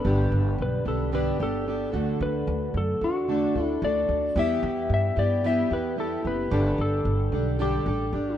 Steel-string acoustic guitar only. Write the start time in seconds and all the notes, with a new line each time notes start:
0.04 G2 D3 G3 B3 D4 G4
0.85 G3 B3 D4 G4
1.12 G2 D3 G3 B3 D4 G4
1.39 G3 B3 D4 G4
1.66 G3 B3 D4 G4
1.92 D3 A3 D4 F#4 A4
3.01 D4 F#4 A4
3.28 D3 A3 D4 F#4 A4
3.55 D4 F#4 A4
3.82 A3 D4 F#4 A4
4.36 E3 G3 B3 E4 G4
5.16 B3 E4 G4
5.43 E3 G3 B3 E4 G4
5.70 B3 E4 G4
5.96 G3 B3 E4 G4
6.23 B3 E4 G4
6.50 G2 D3 G3 D4 G4 A4
7.32 G3 D4 G4 A4
7.59 G2 D3 G3 D4 G4 A4
7.86 G3 D4 G4 A4
8.13 G3 D4 G4 A4